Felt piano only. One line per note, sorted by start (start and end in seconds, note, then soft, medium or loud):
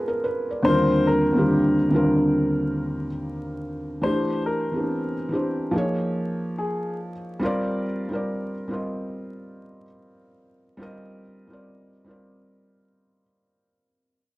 0.00 0.67 G#3 medium
0.00 0.67 B3 medium
0.00 0.66 D4 medium
0.00 0.67 F4 medium
0.00 0.67 G#4 medium
0.00 0.66 A4 medium
0.00 0.08 A#4 medium
0.00 0.24 B4 medium
0.08 0.22 A#4 medium
0.24 0.49 B4 medium
0.50 0.90 D5 soft
0.62 1.05 D#2 medium
0.62 1.06 D3 medium
0.62 1.07 G3 medium
0.62 1.07 C4 medium
0.68 1.08 F4 medium
0.68 1.08 A#4 medium
1.33 1.74 D#2 medium
1.33 1.75 D3 medium
1.33 1.76 G3 medium
1.33 1.76 C4 medium
1.37 1.77 F4 medium
1.37 1.78 G4 medium
1.89 3.05 D#2 medium
1.89 3.06 D3 medium
1.89 3.07 G3 medium
1.89 3.07 C4 medium
1.94 3.08 F4 medium
1.94 3.09 A#4 medium
4.02 4.44 E3 medium
4.02 4.44 A3 medium
4.02 4.45 D4 medium
4.06 4.46 G4 medium
4.06 4.47 C5 medium
4.71 5.13 E3 medium
4.71 5.14 C4 medium
4.71 5.14 D4 medium
4.76 5.16 B3 medium
4.76 5.15 G4 medium
5.29 5.72 E3 medium
5.29 5.72 C4 medium
5.29 5.73 D4 medium
5.33 5.74 G4 medium
5.33 5.75 C5 medium
5.71 7.09 F3 loud
5.71 7.10 A#3 medium
5.71 7.11 D#4 medium
5.76 7.11 G#4 medium
5.76 7.12 C#5 loud
7.39 7.82 G3 loud
7.39 7.83 C4 loud
7.39 7.84 F4 loud
7.44 7.84 A#4 loud
7.44 7.85 D5 loud
8.09 8.50 G3 medium
8.09 8.51 C4 medium
8.09 8.52 F4 medium
8.13 8.53 A#4 medium
8.13 8.54 D5 medium
8.68 9.83 G3 medium
8.68 9.83 C4 medium
8.68 9.84 F4 medium
8.72 9.85 A#4 medium
8.72 9.85 D#5 medium
10.77 11.20 G3 loud
10.77 11.20 C4 medium
10.77 11.21 F4 medium
10.81 11.22 A#4 loud
10.81 11.23 D#5 loud
11.47 11.89 G3 medium
11.47 11.89 C4 medium
11.47 11.90 F4 medium
11.52 11.91 A#4 medium
11.52 11.92 D5 medium
12.04 13.20 G3 medium
12.04 13.21 C4 medium
12.04 13.21 F4 medium
12.09 13.22 A#4 medium
12.09 13.23 D5 medium